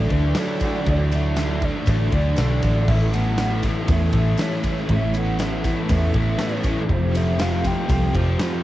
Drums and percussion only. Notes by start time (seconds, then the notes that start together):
0.10 kick, ride
0.35 snare, ride, tambourine
0.60 kick, ride, tambourine
0.74 snare
0.86 kick, ride
1.11 ride, tambourine
1.36 snare, ride, tambourine
1.62 kick, ride
1.86 kick, ride, tambourine
2.12 kick, ride
2.36 snare, ride, tambourine
2.62 kick, ride, tambourine
2.88 kick, crash
3.13 ride, tambourine
3.38 snare, ride, tambourine
3.63 kick, ride, tambourine
3.88 kick, ride, tambourine
4.13 kick, ride
4.37 snare, ride, tambourine
4.63 kick, ride, tambourine
4.77 snare
4.89 kick, ride
5.14 ride, tambourine
5.39 snare, ride, tambourine
5.64 kick, ride, tambourine
5.89 kick, ride, tambourine
6.14 kick, ride
6.39 snare, ride, tambourine
6.63 kick, ride, tambourine
6.76 snare
6.89 kick, ride
7.15 ride, tambourine
7.39 snare, ride, tambourine
7.65 kick, ride, tambourine
7.89 kick, ride, tambourine
8.15 kick, ride
8.39 snare, ride, tambourine